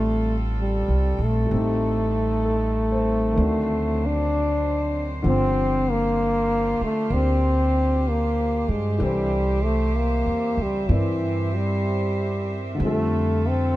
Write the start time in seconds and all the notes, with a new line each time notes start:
Already playing: A1 D3 G3 A3 C4 D4 F4 G4 A4
0.61 G3
0.88 C2
1.19 A#1
1.25 A3
1.46 G3 A3 D#4
1.51 A1 C4 D#4
1.58 G4
2.45 A4
2.92 C5
3.32 D#3 A3
3.36 D2 F#3 C4 D4 C5
3.42 F#4
4.06 D4
5.23 G1 D3 F3 C4 D4 F4 G4
5.28 C4
5.91 A#3
6.81 A3, muted upright bass stroke
7.10 D2 A#3 C4 D4 G4
8.09 A#3
8.68 G2 G#3
8.98 C2 E3 C4 D4 G4 A4 C5 E5
9.03 G3 C5
9.64 A3
9.96 A#3
10.26 E2
10.57 C#2
10.62 G3
10.87 G2 C4 E4 C5
10.91 E3 A#4 D5
11.56 G3
12.75 D3 G3
12.80 F2 C4 F4 A4
12.84 A3 A4
13.49 C4